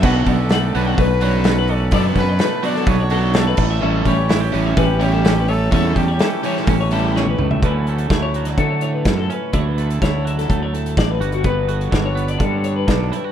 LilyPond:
<<
  \new Staff \with { instrumentName = "Clean electric guitar" } { \time 4/4 \key d \major \tempo 4 = 126 fis''8 d''8 fis''16 d''8 fis''16 b'8 cis''16 a'8 b'16 d''8 | d''16 b'8 d''16 b'8 d''16 a'8 cis''16 a'8 cis''16 b'8 e''16 | e''8 cis''8 e''16 cis''8 e''16 b'8 cis''16 a'8 b'16 cis''8 | cis''16 a'8 cis''16 a'8 cis''16 a'8 cis''16 a'8 cis''16 b'8 e''16 |
b'8 a'8 cis''16 cis''8 d''16 a'8 cis''16 b'8 a'16 b'8 | cis''16 b'8 a'16 cis''8 e''16 a'8 cis''16 a'8 d''16 b'8 fis'16 | b'8 a'8 cis''16 cis''8 d''16 a'8 cis''16 b'8 a'16 b'8 | }
  \new Staff \with { instrumentName = "Trumpet" } { \time 4/4 \key d \major b'8 a'4 b'8 b'4. a'8 | a'8 b'4 d''8 cis''4 a'8. r16 | a'8 cis''4 r8 g'4. a'8 | a'8 g'2 r4. |
r1 | r1 | r1 | }
  \new Staff \with { instrumentName = "Clean electric guitar" } { \time 4/4 \key d \major << { <d a cis' fis'>8 b16 cis'16 a8 fis'4 fis'8 a8 cis'8 | r8 cis'8 a8 fis'8 b16 r16 fis'8 a8 r8 | cis'8 g8 e'16 g'16 cis'8 cis'8 g8 cis'8 r8 | cis'8 g8 cis'8 cis'8 cis'8 g8 cis'8 r8 |
<fis a cis' e'>8 a8 e'4 a4. cis'8 | e'8 a8 e'4 a4. fis'8 | b8 fis'4 b4. d'8 e'16 fis'16 | } \\ { b,4. d4 fis,4. | b,4. d4 fis,4 a,8~ | a,4 e4 e,4. a,8~ | a,4 e4 e,4. a,8 |
d4. fis4 a,4. | d4. fis4 a,4 g,8~ | g,4 d4 d4. g,8 | } >> }
  \new Staff \with { instrumentName = "Overdriven electric guitar" } { \time 4/4 \key d \major <b, fis b d'>8 r4 <b, fis b d'>8 r8 <b, fis b d'>8 r4 | <b, fis b d'>8 r4 <b, fis b d'>8 r8 <b, fis b d'>8 r4 | <e g cis' e'>8 r4 <e g cis' e'>8 r8 <e g cis' e'>8 r4 | <e g cis' e'>8 r4 <e g cis' e'>8 r8 <e g cis' e'>8 r4 |
r1 | r1 | r1 | }
  \new Staff \with { instrumentName = "Fingered electric bass" } { \clef bass \time 4/4 \key d \major b,,8 b,,4 b,,8 b,,2 | fis,8 fis,8 r4 b,,4. a,,8 | a,,8 a,,4 a,,8 a,,2 | e,8 e,8 r4 a,,4. cis,8 |
d,4 d,4 d4 fis,8 r8 | d,4 d,4 d,4 a,,8 g,,8~ | g,,4 g,,4 g,4 b,,8 r8 | }
  \new DrumStaff \with { instrumentName = "Drums" } \drummode { \time 4/4 <cymc bd>8 <hho bd>8 <hho sn>8 hho8 <hho bd>8 hho8 <hho sn>8 hho8 | <hho bd>8 <hho bd>8 <hho sn>8 hho16 sn16 <hho bd>8 hho8 <hho sn>8 <cymc bd>8 | r8 <hho bd>8 <hho sn>8 hho8 <hho bd>8 hho8 <hho sn>8 hho8 | <hho bd>8 <hho bd>8 <hho sn>8 hho16 sn16 <hho bd>8 hho8 sn16 tommh16 toml16 tomfh16 |
<hh bd>8 hh16 hh16 <hh bd sn>8 hh16 <hh sn>16 <hh bd>8 hh8 <hh bd sn>8 hh8 | <hh bd>8 hh16 hh16 <hh bd sn>8 hh16 <hh sn>16 <hh bd>8 hh16 hh16 <hh bd sn>8 hh16 hh16 | <hh bd>8 hh16 hh16 <hh bd sn>8 hh16 hh16 <hh bd>8 hh8 <hh bd sn>8 hh8 | }
>>